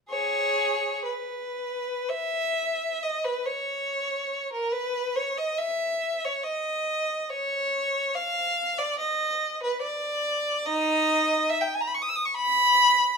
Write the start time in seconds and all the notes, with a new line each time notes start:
0.10 G#4 C#5
1.05 B4
2.10 E5
3.02 D#5
3.24 B4
3.45 C#5
4.53 A#4
4.72 B4
5.16 C#5
5.37 D#5
5.58 E5
6.24 C#5
6.44 D#5
7.29 C#5
8.15 F5
8.78 D5
8.99 D#5
9.63 B4
9.82 D5
10.66 D#4 D#5
11.49 E5
11.60 G5
11.74 G#5
11.80 A#5
11.87 B5
11.94 C#6
12.02 D#6
12.09 E6
12.15 D#6
12.25 C#6
12.34 B5